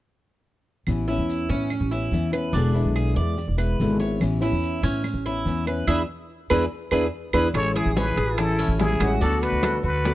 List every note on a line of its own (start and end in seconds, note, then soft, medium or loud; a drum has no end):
0.87 1.17 A1 medium
0.87 1.07 E3 medium
0.87 1.07 B3 medium
0.87 1.08 C#4 medium
0.87 1.07 E4 medium
0.87 claves medium
0.87 maracas medium
1.08 1.50 B3 soft
1.08 1.50 C#4 medium
1.08 1.48 E4 medium
1.08 1.49 E4 medium
1.18 1.48 E2 medium
1.29 maracas medium
1.49 1.79 A2 medium
1.49 1.71 B3 soft
1.49 1.90 C#4 medium
1.49 1.71 C#4 soft
1.49 1.70 E4 soft
1.49 maracas soft
1.70 muted nylon-string guitar stroke medium
1.70 claves medium
1.70 maracas medium
1.80 2.10 A1 medium
1.91 2.12 B3 soft
1.91 2.12 C#4 soft
1.91 2.11 E4 soft
1.91 2.32 E4 medium
1.91 maracas medium
2.11 2.51 E2 medium
2.11 2.32 E3 medium
2.11 2.33 B3 medium
2.11 2.32 C#4 medium
2.11 2.31 E4 medium
2.11 maracas medium
2.32 2.54 B3 soft
2.32 2.53 C#4 soft
2.32 2.53 E4 medium
2.32 2.53 B4 medium
2.32 claves medium
2.32 maracas soft
2.53 2.83 E1 medium
2.53 2.74 B2 medium
2.53 2.74 D3 medium
2.53 2.74 G#3 medium
2.53 2.74 B3 medium
2.53 2.94 D4 medium
2.53 2.73 E4 medium
2.53 maracas medium
2.74 3.16 D3 medium
2.74 3.16 G#3 medium
2.74 3.16 B3 medium
2.74 3.15 E4 medium
2.74 maracas medium
2.85 3.15 B1 medium
2.96 3.16 G#4 medium
2.96 claves medium
2.96 maracas medium
3.16 3.46 E2 medium
3.16 3.37 G#3 soft
3.16 3.37 B3 soft
3.16 3.37 E4 soft
3.16 3.57 D5 medium
3.16 maracas soft
3.37 muted nylon-string guitar stroke medium
3.37 maracas medium
3.48 3.78 E1 medium
3.57 3.79 G#3 soft
3.57 3.78 B3 soft
3.57 3.78 E4 soft
3.57 3.99 B4 medium
3.57 claves medium
3.57 maracas medium
3.80 4.19 G#1 medium
3.80 4.00 B2 medium
3.80 4.00 D3 medium
3.80 4.00 G#3 medium
3.80 4.00 B3 medium
3.80 3.99 E4 medium
3.80 maracas medium
4.00 4.21 G#3 soft
4.00 4.20 B3 soft
4.00 4.20 E4 soft
4.00 4.40 C#5 medium
4.00 maracas soft
4.20 4.51 A1 medium
4.20 4.41 E3 medium
4.20 4.41 B3 medium
4.20 4.41 C#4 medium
4.20 4.40 E4 medium
4.20 claves medium
4.20 maracas medium
4.41 4.83 B3 medium
4.41 4.82 C#4 medium
4.41 4.81 E4 medium
4.41 4.82 E4 medium
4.41 maracas medium
4.52 4.82 E2 medium
4.63 maracas medium
4.82 5.13 A2 medium
4.82 5.03 B3 soft
4.82 5.03 C#4 soft
4.82 5.24 C#4 medium
4.82 5.03 E4 soft
4.82 maracas soft
5.04 muted nylon-string guitar stroke medium
5.04 claves medium
5.04 maracas medium
5.14 5.44 A1 medium
5.26 5.45 B3 soft
5.26 5.46 C#4 soft
5.26 5.66 E4 medium
5.26 5.46 E4 medium
5.26 maracas soft
5.45 5.85 E2 medium
5.45 5.66 E3 medium
5.45 5.66 B3 medium
5.45 5.67 C#4 medium
5.45 5.65 E4 medium
5.45 maracas medium
5.66 5.87 B3 soft
5.66 5.88 C#4 soft
5.66 5.87 E4 medium
5.66 5.87 B4 medium
5.66 claves medium
5.66 maracas soft
5.87 6.03 E2 medium
5.87 6.01 B3 medium
5.87 6.01 D4 medium
5.87 6.01 E4 medium
5.87 6.01 G#4 medium
5.87 6.01 B4 medium
5.87 claves medium
5.87 maracas medium
6.50 6.66 E2 medium
6.50 6.64 B3 medium
6.50 6.64 D4 medium
6.50 6.64 E4 medium
6.50 6.64 G#4 medium
6.50 6.64 B4 medium
6.50 claves medium
6.50 maracas medium
6.91 7.07 E2 medium
6.91 7.05 B3 medium
6.91 7.05 D4 medium
6.91 7.06 E4 medium
6.91 7.05 E4 medium
6.91 7.05 G#4 medium
6.91 7.05 B4 medium
6.91 claves loud
6.91 maracas medium
7.33 7.49 E2 medium
7.33 7.48 B3 medium
7.33 7.48 D4 medium
7.33 7.47 E4 medium
7.33 7.48 E4 medium
7.33 7.47 G#4 medium
7.33 7.47 B4 medium
7.33 claves loud
7.33 maracas medium
7.54 7.84 A1 medium
7.54 8.17 E3 medium
7.54 8.17 G#3 medium
7.54 8.17 C#4 medium
7.54 8.17 E4 medium
7.54 7.76 A4 medium
7.54 7.78 C#5 loud
7.54 high bongo medium
7.54 high conga soft
7.54 high timbale medium
7.54 claves medium
7.54 maracas medium
7.74 7.94 E4 medium
7.74 7.96 G#4 medium
7.74 high bongo soft
7.74 high conga soft
7.74 high timbale medium
7.86 8.16 A1 medium
7.94 8.17 C#4 medium
7.94 8.37 G#4 medium
7.94 8.39 B4 medium
7.94 high bongo medium
7.94 high conga medium
7.94 low timbale medium
7.94 maracas medium
8.17 8.67 A1 medium
8.17 8.58 G#4 medium
8.17 muted nylon-string guitar stroke medium
8.17 high conga soft
8.17 high timbale medium
8.17 maracas soft
8.36 8.79 E3 medium
8.36 8.80 C#4 medium
8.36 8.76 E4 medium
8.36 8.78 A4 medium
8.36 high bongo medium
8.36 high conga soft
8.36 high timbale medium
8.36 claves medium
8.36 maracas medium
8.40 8.80 E4 medium
8.59 8.99 C#4 medium
8.59 high bongo soft
8.59 high conga soft
8.68 8.99 A1 medium
8.77 9.00 E3 soft
8.77 9.00 G#3 soft
8.77 9.17 E4 medium
8.77 9.18 G#4 medium
8.77 high bongo soft
8.77 low bongo medium
8.77 high conga medium
8.77 high timbale medium
8.77 low timbale medium
8.77 maracas medium
8.81 9.01 C#4 soft
8.81 9.00 E4 soft
9.00 9.20 A1 medium
9.00 9.21 G#3 medium
9.00 9.21 C#4 medium
9.00 9.21 E4 medium
9.00 9.21 F#4 medium
9.00 high bongo soft
9.00 high conga medium
9.00 high timbale loud
9.00 claves medium
9.00 maracas soft
9.19 9.51 D2 medium
9.19 9.83 D3 medium
9.19 9.83 A3 medium
9.19 9.84 B3 medium
9.19 9.62 D4 medium
9.19 9.40 F#4 medium
9.19 9.44 A4 medium
9.19 high bongo medium
9.19 maracas medium
9.23 9.84 F#4 medium
9.40 9.81 F#4 medium
9.40 9.84 B4 medium
9.40 high bongo soft
9.40 high conga soft
9.40 high timbale medium
9.40 maracas medium
9.52 9.82 D2 medium
9.63 10.04 A4 medium
9.63 high bongo medium
9.63 high conga medium
9.63 high timbale medium
9.63 low timbale medium
9.63 claves medium
9.63 maracas medium
9.82 10.14 D2 medium
9.82 10.14 F#4 medium
9.82 10.14 B4 medium
9.82 muted nylon-string guitar stroke medium
9.82 high conga soft
9.82 maracas soft
10.04 10.14 D3 medium
10.04 10.14 A3 medium
10.04 10.14 B3 medium
10.04 10.14 F#4 medium
10.04 10.14 D5 medium
10.04 high bongo medium
10.04 high conga soft
10.04 high timbale medium
10.04 maracas medium